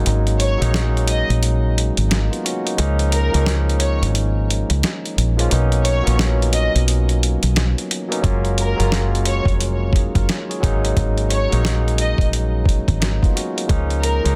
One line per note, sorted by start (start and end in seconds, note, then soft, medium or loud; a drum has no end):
0.00 0.48 F#3 medium
0.00 0.48 G#3 medium
0.00 0.49 A#3 medium
0.00 0.49 C#4 medium
0.00 0.50 D#4 loud
0.00 2.80 G#4 medium
0.00 2.80 C#5 medium
0.06 0.55 G#1 loud
0.06 closed hi-hat medium
0.27 closed hi-hat soft
0.40 0.71 C#5 medium
0.40 closed hi-hat medium
0.58 1.22 A#1 medium
0.58 1.77 F#3 medium
0.58 1.77 G#3 medium
0.58 1.78 A#3 medium
0.58 1.78 C#4 medium
0.58 1.79 D#4 loud
0.58 closed hi-hat soft
0.74 snare loud
0.74 closed hi-hat medium
0.97 closed hi-hat soft
1.08 1.28 D#5 medium
1.08 closed hi-hat medium
1.30 1.90 A#1 medium
1.30 closed hi-hat soft
1.43 closed hi-hat medium
1.78 closed hi-hat medium
1.97 2.28 G#1 medium
1.97 closed hi-hat medium
2.09 2.30 A#3 medium
2.09 2.30 D#4 medium
2.09 snare loud
2.09 closed hi-hat loud
2.31 2.44 B3 medium
2.31 2.44 F4 medium
2.31 closed hi-hat soft
2.45 2.65 C#4 medium
2.45 2.64 F#4 medium
2.45 closed hi-hat medium
2.65 2.77 A#3 medium
2.65 2.79 D#4 medium
2.65 closed hi-hat medium
2.76 3.28 C#2 loud
2.76 3.25 F3 medium
2.76 3.26 G#3 medium
2.76 3.26 A#3 medium
2.76 3.27 C#4 medium
2.76 3.27 D#4 medium
2.76 closed hi-hat medium
2.99 closed hi-hat soft
3.12 3.43 A#4 medium
3.12 closed hi-hat medium
3.32 4.04 C#2 medium
3.32 4.50 F3 medium
3.32 4.51 G#3 medium
3.32 4.51 A#3 medium
3.32 4.52 C#4 medium
3.32 4.52 D#4 medium
3.32 closed hi-hat soft
3.46 snare loud
3.46 closed hi-hat loud
3.69 closed hi-hat soft
3.80 3.99 C#5 medium
3.80 closed hi-hat medium
4.02 4.63 G#1 medium
4.02 closed hi-hat soft
4.15 closed hi-hat medium
4.50 closed hi-hat medium
4.70 4.82 C#2 medium
4.70 closed hi-hat medium
4.83 snare loud
4.83 closed hi-hat loud
5.06 closed hi-hat soft
5.18 5.48 A#1 medium
5.18 closed hi-hat medium
5.37 5.49 F3 medium
5.37 5.49 G#3 medium
5.37 5.49 A#3 medium
5.37 5.50 C#4 medium
5.37 5.51 F4 medium
5.37 closed hi-hat medium
5.49 6.01 B1 medium
5.49 5.98 F#3 medium
5.49 5.99 A#3 medium
5.49 5.99 B3 medium
5.49 5.99 C#4 medium
5.49 6.00 D#4 medium
5.49 closed hi-hat medium
5.72 closed hi-hat soft
5.85 6.16 C#5 medium
5.85 closed hi-hat medium
6.03 7.22 F#3 medium
6.03 7.22 A#3 medium
6.03 7.23 B3 medium
6.03 7.23 C#4 medium
6.03 7.24 F4 medium
6.07 6.68 A#1 medium
6.07 closed hi-hat soft
6.19 snare loud
6.19 closed hi-hat medium
6.42 closed hi-hat soft
6.53 6.73 D#5 medium
6.53 closed hi-hat medium
6.75 7.36 B1 medium
6.75 closed hi-hat soft
6.88 closed hi-hat medium
7.09 closed hi-hat soft
7.23 closed hi-hat medium
7.43 7.73 B1 medium
7.43 closed hi-hat medium
7.56 snare loud
7.56 closed hi-hat loud
7.78 closed hi-hat soft
7.91 closed hi-hat medium
8.08 8.21 F#3 medium
8.08 8.22 A#3 medium
8.08 8.22 B3 medium
8.08 8.23 C#4 medium
8.08 8.23 D#4 medium
8.08 closed hi-hat medium
8.22 8.73 F#1 loud
8.22 8.71 F#3 medium
8.22 8.71 G#3 medium
8.22 8.72 A#3 medium
8.22 8.72 C#4 medium
8.22 8.73 F4 medium
8.22 kick loud
8.22 closed hi-hat medium
8.45 closed hi-hat soft
8.58 8.90 A#4 medium
8.58 closed hi-hat medium
8.76 9.40 F#1 medium
8.76 9.95 F#3 medium
8.76 9.95 G#3 medium
8.76 9.96 A#3 medium
8.76 9.96 C#4 medium
8.76 9.95 F4 medium
8.76 closed hi-hat soft
8.92 snare loud
8.92 closed hi-hat loud
9.15 closed hi-hat soft
9.25 9.46 C#5 medium
9.25 closed hi-hat medium
9.45 10.07 F1 medium
9.45 kick loud
9.45 closed hi-hat soft
9.60 closed hi-hat medium
9.93 10.15 D#4 medium
9.93 10.14 G#4 medium
9.93 kick loud
9.93 closed hi-hat medium
10.15 10.27 F#1 loud
10.15 10.48 F4 medium
10.15 10.47 A#4 medium
10.15 kick medium
10.15 closed hi-hat medium
10.29 snare loud
10.29 closed hi-hat loud
10.49 10.82 G#4 medium
10.49 10.82 C#5 medium
10.49 closed hi-hat soft
10.60 10.93 G#1 medium
10.60 11.39 F#3 loud
10.60 11.39 G#3 medium
10.60 11.40 A#3 medium
10.60 11.40 C#4 medium
10.60 11.41 D#4 loud
10.60 kick loud
10.60 closed hi-hat medium
10.85 closed hi-hat medium
10.97 11.46 G#1 loud
10.97 kick loud
10.97 closed hi-hat medium
11.18 closed hi-hat soft
11.30 11.62 C#5 medium
11.30 closed hi-hat medium
11.49 12.13 A#1 medium
11.49 12.68 F#3 medium
11.49 12.68 G#3 medium
11.49 12.69 A#3 medium
11.49 12.69 C#4 medium
11.49 12.70 D#4 loud
11.49 closed hi-hat soft
11.65 snare loud
11.65 closed hi-hat loud
11.88 closed hi-hat soft
11.98 12.19 D#5 medium
11.98 closed hi-hat medium
12.18 12.80 A#1 medium
12.18 kick medium
12.18 closed hi-hat soft
12.33 closed hi-hat loud
12.66 kick loud
12.66 closed hi-hat medium
12.88 13.19 G#1 medium
12.88 kick medium
12.88 closed hi-hat medium
13.00 13.21 A#3 medium
13.00 13.21 D#4 medium
13.00 snare loud
13.00 closed hi-hat loud
13.22 13.35 B3 medium
13.22 13.35 F4 medium
13.22 kick medium
13.22 closed hi-hat soft
13.36 13.56 C#4 medium
13.36 13.55 F#4 medium
13.36 closed hi-hat medium
13.56 13.68 A#3 medium
13.56 13.70 D#4 medium
13.56 closed hi-hat medium
13.67 14.19 C#2 loud
13.67 14.16 F3 medium
13.67 14.17 G#3 medium
13.67 14.17 A#3 medium
13.67 14.18 C#4 medium
13.67 14.18 D#4 loud
13.67 kick loud
13.67 closed hi-hat medium
13.90 closed hi-hat soft
14.03 14.34 A#4 medium
14.03 closed hi-hat medium
14.23 14.36 C#2 medium
14.23 14.36 F3 medium
14.23 14.36 G#3 medium
14.23 14.36 A#3 medium
14.23 14.36 C#4 medium
14.23 14.36 D#4 medium
14.23 closed hi-hat soft